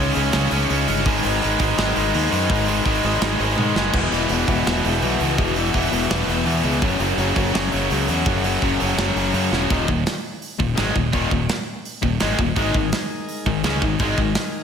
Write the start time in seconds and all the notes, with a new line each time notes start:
Already playing: C#2 C#3 G#3 D#4 E4
0.00 C#4
0.14 C#2 C#3 G#3 C#4, open hi-hat
0.32 C#2 C#3 G#3 C#4, snare, open hi-hat
0.50 C#2 C#3 G#3 C#4, open hi-hat
0.69 C#2 C#3 G#3 C#4, open hi-hat
0.88 G1 C#3 G#3 C#4, open hi-hat
1.06 G#1 G#2 D#3 G#3 A#4 B4, kick, open hi-hat
1.23 G#1 G#2 D#3 G#3, open hi-hat
1.42 G#1 G#2 D#3 G#3, open hi-hat
1.60 G#1 G#2 D#3 G#3, kick, open hi-hat
1.78 G#1 G#2 D#3 G#3, snare, open hi-hat
1.96 G#1 G#2 D#3 G#3, open hi-hat
2.14 D#2 G#2 D#3 G#3, open hi-hat
2.32 F#2 G#2 D#3 G#3, open hi-hat
2.50 G#1 G#2 D#3 G#3, kick, open hi-hat
2.68 G#2 D#3 G#3, open hi-hat
2.86 G#1 G#2 D#3 G#3, kick, open hi-hat
3.03 G#1 G#2 D#3 G#3, open hi-hat
3.21 G#1 G#2 D#3 G#3, snare, open hi-hat
3.40 G#1 G#2 D#3 G#3, open hi-hat
3.57 G#2 D#3 G#3, high tom
3.75 F#1 G#2 D#3 G#3, snare
3.93 E1 E2 B2 E3 B3 F#4 G#4, kick, crash
4.11 E1 E2 B2 E3, snare, open hi-hat
4.29 E1 E2 B2, open hi-hat
4.33 E3
4.48 E1 E2 B2 E3, kick, open hi-hat
4.66 E1 E2 B2 E3, snare, open hi-hat
4.85 E1 E2 B2 E3, open hi-hat
5.02 B1 E2 B2 E3, open hi-hat
5.20 C#2 E2 B2 E3, open hi-hat
5.38 E1 E2 B2 E3, kick
5.56 E2 B2 E3, open hi-hat
5.74 E1 E2 B2 E3, kick, open hi-hat
5.92 E1 E2 B2 E3, open hi-hat
6.10 E1 E2 B2 E3, snare, open hi-hat
6.27 E1 E2 B2 E3, open hi-hat
6.45 E2 B2 E3, open hi-hat
6.63 C#2 E2 B2 E3, open hi-hat
6.81 F#1 F#2 C#3 F#3 C#4 A#4, kick, open hi-hat
6.99 F#1 F#2 C#3 F#3, open hi-hat
7.17 F#1 F#2 C#3 F#3, open hi-hat
7.36 F#1 F#2 C#3 F#3, kick, open hi-hat
7.54 F#1 F#2 C#3 F#3, snare, open hi-hat
7.72 F#1 F#2 C#3 F#3, open hi-hat
7.90 C#2 F#2 C#3 F#3, open hi-hat
8.08 E2 F#2 C#3 F#3, open hi-hat
8.25 F#1 F#2 C#3 F#3, kick, open hi-hat
8.44 F#2 C#3 F#3, open hi-hat
8.62 F#1 F#2 C#3 F#3, kick, open hi-hat
8.80 F#1 F#2 C#3 F#3, open hi-hat
8.97 F#1 F#2 C#3 F#3, snare
9.15 F#1 F#2 C#3 F#3, open hi-hat
9.33 F#2 C#3 F#3, open hi-hat
9.52 E1 F#2 C#3 F#3, snare
9.70 D#1 D#2 A#2 D#3, kick, open hi-hat
9.88 D#1 D#2 A#2, kick
10.06 snare, open hi-hat
10.42 open hi-hat
10.59 D#1 D#2 A#2, kick
10.76 G#1 G#2 D#3 G#3, snare, open hi-hat
10.95 D#1 D#2 A#2, kick
11.13 D#1 D#2 A#2 D#3, kick, open hi-hat
11.30 D#1 D#2 A#2, kick
11.49 snare, open hi-hat
11.85 open hi-hat
12.02 D#1 D#2 A#2, kick
12.20 G#1 G#2 D#3 G#3, snare, open hi-hat
12.39 D#1 D#2 A#2, kick
12.56 G#1 G#2 D#3 G#3 D#4 A#4 G#5, kick, open hi-hat
12.74 G#1 G#2 D#3, kick
12.92 snare, open hi-hat
13.29 open hi-hat
13.46 G#1 G#2 D#3, kick
13.63 C#2 C#3 G#3 C#4, snare, open hi-hat
13.82 G#1 G#2 D#3, kick
13.99 G#1 G#2 D#3 G#3, kick, open hi-hat
14.18 G#1 G#2 D#3, kick
14.35 snare, open hi-hat